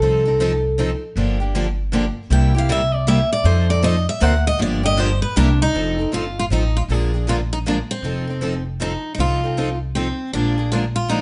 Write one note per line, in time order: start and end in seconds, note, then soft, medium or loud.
0.00 0.92 C2 medium
0.00 0.23 F3 medium
0.00 0.23 C4 medium
0.00 0.23 D#4 medium
0.00 0.79 A4 medium
0.00 0.23 A4 medium
0.25 0.39 C4 soft
0.25 0.39 D#4 medium
0.25 0.39 A4 medium
0.40 0.51 F3 medium
0.40 0.51 C4 loud
0.40 0.51 D#4 medium
0.40 0.51 A4 loud
0.78 0.89 F3 medium
0.78 0.89 C4 medium
0.78 0.90 D#4 medium
0.78 0.90 A4 medium
1.16 2.07 G1 medium
1.16 1.37 D3 medium
1.16 1.37 F3 medium
1.16 1.38 A#3 medium
1.16 1.38 D4 medium
1.16 1.38 G4 medium
1.40 1.54 A#3 soft
1.40 1.54 D4 soft
1.40 1.54 G4 medium
1.55 1.66 D3 loud
1.55 1.66 F3 medium
1.55 1.66 A#3 medium
1.55 1.66 D4 medium
1.55 1.66 G4 medium
1.92 2.03 D3 medium
1.92 2.04 F3 medium
1.92 2.04 A#3 medium
1.92 2.04 D4 loud
1.92 2.04 G4 medium
2.30 3.22 C2 medium
2.30 2.52 C3 medium
2.30 2.52 G3 medium
2.30 2.52 A#3 medium
2.30 2.52 E4 medium
2.30 2.52 G4 medium
2.30 2.55 G5 medium
2.55 2.68 A#3 medium
2.55 2.69 E4 medium
2.55 2.68 G4 medium
2.55 2.70 F5 medium
2.69 2.80 C3 medium
2.69 2.80 G3 loud
2.69 2.80 A#3 loud
2.69 2.81 E4 medium
2.69 2.81 G4 medium
2.69 2.94 E5 medium
2.94 3.07 D5 medium
3.07 3.18 C3 medium
3.07 3.19 G3 medium
3.07 3.19 A#3 loud
3.07 3.19 E4 loud
3.07 3.19 G4 loud
3.07 3.31 E5 loud
3.33 3.45 D5 medium
3.44 4.05 F2 medium
3.44 3.66 F3 medium
3.44 3.66 C4 medium
3.44 3.66 D#4 medium
3.44 3.66 A4 medium
3.44 3.68 C5 medium
3.70 3.82 C4 medium
3.70 3.83 D#4 medium
3.70 3.83 A4 medium
3.70 3.83 D5 medium
3.83 3.94 F3 medium
3.83 3.94 C4 medium
3.83 3.95 D#4 loud
3.83 3.95 A4 loud
3.83 4.07 D#5 medium
4.09 4.22 E5 loud
4.20 4.52 D2 medium
4.20 4.32 D3 medium
4.20 4.32 A#3 loud
4.20 4.32 C4 loud
4.20 4.33 F#4 loud
4.20 4.33 A#4 loud
4.20 4.33 C5 loud
4.20 4.45 F#5 loud
4.47 4.60 D#5 loud
4.58 5.20 G1 medium
4.58 4.80 D3 medium
4.58 4.80 F3 medium
4.58 4.81 A#3 medium
4.58 4.81 D4 medium
4.58 4.81 G4 medium
4.58 4.84 D5 medium
4.83 4.96 A#3 soft
4.83 4.96 D4 medium
4.83 4.97 G4 medium
4.83 5.00 D#5 loud
4.97 5.08 D3 medium
4.97 5.09 F3 loud
4.97 5.09 A#3 loud
4.97 5.09 D4 loud
4.97 5.09 G4 loud
4.97 5.22 C5 medium
5.22 5.36 B4 medium
5.36 5.67 C2 loud
5.36 5.47 C3 medium
5.36 5.47 G3 medium
5.36 5.47 A#3 loud
5.36 5.59 D4 medium
5.36 5.48 E4 loud
5.36 5.48 G4 loud
5.36 5.51 A#4 medium
5.62 6.14 D#4 loud
5.73 6.04 F1 medium
5.73 5.95 F3 medium
5.73 5.96 C4 medium
5.73 5.96 D#4 medium
5.73 5.96 A4 medium
5.99 6.11 C4 soft
5.99 6.11 D#4 soft
5.99 6.12 A4 medium
6.12 6.45 G1 medium
6.12 6.23 F3 medium
6.12 6.24 C4 medium
6.12 6.24 D#4 medium
6.12 6.38 F4 medium
6.12 6.24 A4 medium
6.39 6.44 F4 medium
6.50 6.83 A1 medium
6.50 6.62 F3 medium
6.50 6.62 C4 medium
6.50 6.62 D#4 medium
6.50 6.76 D#4 medium
6.50 6.63 A4 medium
6.77 6.82 F4 medium
6.88 7.80 A#1 medium
6.88 7.10 D3 medium
6.88 7.10 F3 medium
6.88 7.11 G#3 medium
6.88 7.11 A#3 medium
6.88 7.11 D4 medium
6.88 7.11 F4 medium
6.88 7.11 G#4 medium
6.88 7.28 G#4 loud
6.88 7.11 A#4 medium
7.14 7.28 A#3 soft
7.14 7.27 D4 soft
7.14 7.27 G#4 medium
7.27 7.39 D3 medium
7.27 7.39 F3 medium
7.27 7.38 G#3 medium
7.27 7.39 A#3 medium
7.27 7.40 D4 medium
7.27 7.39 F4 medium
7.27 7.35 F4 medium
7.27 7.40 G#4 loud
7.27 7.39 A#4 medium
7.53 7.58 D#4 medium
7.66 7.77 D3 medium
7.66 7.77 F3 medium
7.66 7.77 G#3 medium
7.66 7.77 A#3 medium
7.66 7.77 D4 medium
7.66 7.74 D4 medium
7.66 7.77 F4 medium
7.66 7.78 G#4 medium
7.66 7.78 A#4 medium
7.91 8.63 C4 medium
8.02 8.95 F1 medium
8.02 8.25 F3 medium
8.02 8.25 C4 medium
8.02 8.25 D#4 medium
8.02 8.26 A4 medium
8.27 8.41 C4 soft
8.27 8.41 D#4 soft
8.27 8.41 A4 medium
8.41 8.53 F3 medium
8.41 8.53 C4 medium
8.41 8.53 D#4 medium
8.41 8.53 A4 medium
8.80 8.91 F3 medium
8.80 8.91 C4 medium
8.80 8.92 D#4 medium
8.80 9.12 D#4 medium
8.80 8.92 A4 medium
9.15 10.10 C2 medium
9.15 9.39 F3 medium
9.15 9.19 D#4 medium
9.19 9.40 C4 medium
9.19 9.40 D#4 medium
9.19 9.78 F4 medium
9.19 9.40 A4 medium
9.44 9.57 C4 soft
9.44 9.57 D#4 soft
9.44 9.57 A4 medium
9.57 9.68 F3 medium
9.57 9.69 C4 medium
9.57 9.68 D#4 medium
9.57 9.69 A4 medium
9.95 10.06 F3 medium
9.95 10.33 C4 medium
9.95 10.07 C4 medium
9.95 10.07 D#4 medium
9.95 10.07 A4 medium
10.33 11.21 A#1 medium
10.33 10.55 D3 medium
10.33 10.55 F3 medium
10.33 10.55 G#3 medium
10.33 10.55 A#3 medium
10.33 10.73 D4 medium
10.33 10.55 D4 medium
10.33 10.55 F4 medium
10.33 10.56 G#4 medium
10.33 10.55 A#4 medium
10.58 10.71 A#3 soft
10.58 10.71 D4 soft
10.58 10.71 G#4 medium
10.72 10.83 D3 medium
10.72 10.83 F3 medium
10.72 10.84 G#3 medium
10.72 10.83 A#3 medium
10.72 10.83 D4 medium
10.72 10.78 F4 medium
10.72 10.84 F4 medium
10.72 10.84 G#4 medium
10.72 10.84 A#4 medium
10.96 11.09 F4 medium
11.08 11.20 D3 medium
11.08 11.21 F3 medium
11.08 11.21 G#3 medium
11.08 11.21 A#3 medium
11.08 11.21 D4 medium
11.08 11.21 D#4 medium
11.08 11.21 F4 medium
11.08 11.21 G#4 medium
11.08 11.21 A#4 loud